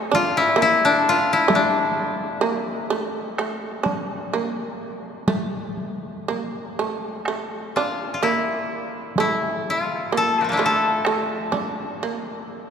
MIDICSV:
0, 0, Header, 1, 4, 480
1, 0, Start_track
1, 0, Tempo, 933126
1, 1738, Time_signature, 4, 2, 24, 8
1, 2225, Tempo, 970874
1, 4145, Tempo, 946372
1, 6423, End_track
2, 0, Start_track
2, 0, Title_t, "Koto"
2, 0, Program_c, 0, 107
2, 75, Note_on_c, 0, 65, 92
2, 191, Note_on_c, 0, 64, 92
2, 222, Note_off_c, 0, 65, 0
2, 317, Note_off_c, 0, 64, 0
2, 319, Note_on_c, 0, 64, 85
2, 436, Note_on_c, 0, 62, 87
2, 561, Note_on_c, 0, 65, 92
2, 592, Note_off_c, 0, 64, 0
2, 684, Note_on_c, 0, 64, 80
2, 715, Note_off_c, 0, 65, 0
2, 796, Note_off_c, 0, 62, 0
2, 798, Note_on_c, 0, 62, 66
2, 1848, Note_off_c, 0, 64, 0
2, 3172, Note_off_c, 0, 62, 0
2, 3923, Note_on_c, 0, 65, 59
2, 4109, Note_off_c, 0, 65, 0
2, 4111, Note_on_c, 0, 65, 47
2, 4156, Note_on_c, 0, 64, 71
2, 4186, Note_off_c, 0, 65, 0
2, 4645, Note_off_c, 0, 64, 0
2, 4647, Note_on_c, 0, 64, 62
2, 4901, Note_on_c, 0, 65, 72
2, 4932, Note_off_c, 0, 64, 0
2, 5141, Note_on_c, 0, 69, 79
2, 5261, Note_on_c, 0, 53, 34
2, 5279, Note_on_c, 0, 57, 33
2, 5284, Note_off_c, 0, 65, 0
2, 5284, Note_off_c, 0, 69, 0
2, 5284, Note_on_c, 0, 65, 79
2, 5302, Note_on_c, 0, 58, 44
2, 5316, Note_on_c, 0, 62, 41
2, 5323, Note_on_c, 0, 64, 45
2, 5344, Note_off_c, 0, 65, 0
2, 5344, Note_on_c, 0, 65, 49
2, 5354, Note_off_c, 0, 53, 0
2, 5386, Note_on_c, 0, 69, 73
2, 5417, Note_off_c, 0, 58, 0
2, 6423, Note_off_c, 0, 57, 0
2, 6423, Note_off_c, 0, 62, 0
2, 6423, Note_off_c, 0, 64, 0
2, 6423, Note_off_c, 0, 65, 0
2, 6423, Note_off_c, 0, 69, 0
2, 6423, End_track
3, 0, Start_track
3, 0, Title_t, "Shamisen"
3, 0, Program_c, 1, 106
3, 0, Note_on_c, 1, 57, 80
3, 59, Note_on_c, 1, 62, 73
3, 62, Note_off_c, 1, 57, 0
3, 288, Note_on_c, 1, 58, 73
3, 300, Note_off_c, 1, 62, 0
3, 760, Note_off_c, 1, 58, 0
3, 762, Note_on_c, 1, 57, 77
3, 1238, Note_off_c, 1, 57, 0
3, 1241, Note_on_c, 1, 58, 68
3, 1488, Note_off_c, 1, 58, 0
3, 1494, Note_on_c, 1, 57, 62
3, 1737, Note_off_c, 1, 57, 0
3, 1743, Note_on_c, 1, 57, 65
3, 1972, Note_on_c, 1, 62, 60
3, 1985, Note_off_c, 1, 57, 0
3, 2222, Note_off_c, 1, 62, 0
3, 2230, Note_on_c, 1, 58, 59
3, 2693, Note_off_c, 1, 58, 0
3, 2695, Note_on_c, 1, 57, 68
3, 3181, Note_off_c, 1, 57, 0
3, 3193, Note_on_c, 1, 58, 58
3, 3435, Note_off_c, 1, 58, 0
3, 3444, Note_on_c, 1, 57, 59
3, 3680, Note_off_c, 1, 57, 0
3, 3685, Note_on_c, 1, 57, 66
3, 3918, Note_off_c, 1, 57, 0
3, 3928, Note_on_c, 1, 62, 56
3, 4154, Note_off_c, 1, 62, 0
3, 4154, Note_on_c, 1, 58, 67
3, 4632, Note_off_c, 1, 58, 0
3, 4637, Note_on_c, 1, 57, 65
3, 5114, Note_off_c, 1, 57, 0
3, 5116, Note_on_c, 1, 58, 59
3, 5351, Note_off_c, 1, 58, 0
3, 5353, Note_on_c, 1, 57, 60
3, 5587, Note_off_c, 1, 57, 0
3, 5593, Note_on_c, 1, 57, 71
3, 5825, Note_on_c, 1, 62, 61
3, 5833, Note_off_c, 1, 57, 0
3, 6068, Note_off_c, 1, 62, 0
3, 6082, Note_on_c, 1, 58, 60
3, 6423, Note_off_c, 1, 58, 0
3, 6423, End_track
4, 0, Start_track
4, 0, Title_t, "Taiko and cinematic ensemble drums"
4, 70, Note_on_c, 9, 48, 44
4, 122, Note_off_c, 9, 48, 0
4, 316, Note_on_c, 9, 37, 37
4, 367, Note_off_c, 9, 37, 0
4, 774, Note_on_c, 9, 48, 53
4, 825, Note_off_c, 9, 48, 0
4, 1741, Note_on_c, 9, 37, 54
4, 1792, Note_off_c, 9, 37, 0
4, 1985, Note_on_c, 9, 48, 43
4, 2037, Note_off_c, 9, 48, 0
4, 2695, Note_on_c, 9, 48, 56
4, 2745, Note_off_c, 9, 48, 0
4, 2940, Note_on_c, 9, 48, 36
4, 2989, Note_off_c, 9, 48, 0
4, 3674, Note_on_c, 9, 37, 52
4, 3724, Note_off_c, 9, 37, 0
4, 4626, Note_on_c, 9, 48, 53
4, 4676, Note_off_c, 9, 48, 0
4, 5585, Note_on_c, 9, 37, 61
4, 5636, Note_off_c, 9, 37, 0
4, 5827, Note_on_c, 9, 48, 36
4, 5878, Note_off_c, 9, 48, 0
4, 6423, End_track
0, 0, End_of_file